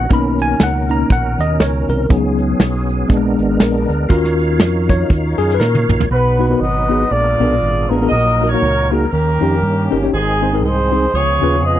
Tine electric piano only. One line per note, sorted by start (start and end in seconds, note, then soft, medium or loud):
0.00 0.11 F#5 loud
0.10 0.85 A#3 soft
0.10 0.85 C#4 soft
0.10 0.86 D#4 medium
0.10 0.39 B5 loud
0.42 0.63 G#5 loud
0.63 0.92 F#5 medium
0.88 1.08 A#3 soft
0.88 1.08 C#4 soft
0.88 1.09 D#4 soft
0.88 1.12 A#5 medium
1.12 1.41 F#5 medium
1.41 1.62 D#5 loud
1.62 1.88 C#5 medium
1.90 2.12 A#4 medium
2.09 3.06 F#3 medium
2.09 3.07 B3 soft
2.09 3.07 D#4 medium
2.09 2.38 G#4 medium
3.09 3.84 G#3 medium
3.09 3.85 B3 soft
3.09 3.85 D4 medium
3.60 4.10 A#4 medium
4.09 6.07 C#4 soft
4.09 6.07 F4 medium
4.09 6.06 F#4 medium
4.09 4.92 A#4 medium
4.90 5.10 C#5 loud
5.38 5.55 G#4 loud
5.54 5.61 B4 medium
5.60 6.07 A#4 loud
6.11 6.86 B2 medium
6.39 6.46 B3 medium
6.39 6.46 D#4 medium
6.39 6.46 F#4 medium
6.39 6.47 B4 medium
6.49 6.63 B3 soft
6.49 6.63 D#4 soft
6.49 6.64 F#4 soft
6.49 6.64 A#4 medium
6.89 7.02 B3 medium
6.89 7.02 D#4 medium
6.89 7.03 F#4 medium
6.89 7.03 G#4 medium
7.12 7.87 A#2 medium
7.40 7.53 B3 medium
7.40 7.53 D4 medium
7.40 7.53 G#4 medium
7.40 7.54 A#4 medium
7.90 7.97 B3 medium
7.90 7.97 D4 medium
7.90 7.97 G#4 medium
7.90 7.97 B4 medium
8.01 8.12 B3 medium
8.01 8.12 D4 medium
8.01 8.13 G#4 soft
8.01 8.13 A#4 medium
8.13 8.88 A#2 medium
8.42 8.47 A#3 medium
8.42 8.48 D#4 medium
8.42 8.48 F#4 medium
8.42 8.48 A#4 medium
8.52 8.65 A#3 medium
8.52 8.65 D#4 soft
8.52 8.65 F#4 medium
8.52 8.66 C#5 medium
8.91 9.04 A#3 medium
8.91 9.04 D#4 medium
8.91 9.04 F#4 medium
8.91 9.04 G#4 medium
9.13 9.88 D#3 medium
9.41 9.53 C#4 medium
9.41 9.54 D#4 medium
9.41 9.54 G4 medium
9.41 9.55 A#4 medium
9.91 9.97 C#4 medium
9.91 9.98 D#4 medium
9.91 9.98 G4 medium
9.91 9.98 A#4 medium
10.02 10.13 C#4 medium
10.02 10.13 D#4 medium
10.02 10.13 G4 medium
10.02 10.14 C#5 medium
10.13 10.88 G#2 medium
10.41 10.48 C4 medium
10.41 10.48 D#4 medium
10.41 10.48 G#4 medium
10.41 10.48 C5 medium
10.53 10.65 C4 medium
10.53 10.66 D#4 medium
10.53 10.66 G#4 medium
10.53 10.67 A#4 medium
10.91 11.04 C4 medium
10.91 11.04 D#4 medium
10.91 11.05 G#4 medium
10.91 11.05 C5 medium
11.14 11.80 C#3 medium
11.42 11.54 C#4 medium
11.42 11.55 F4 medium
11.42 11.55 G#4 medium
11.42 11.55 B4 medium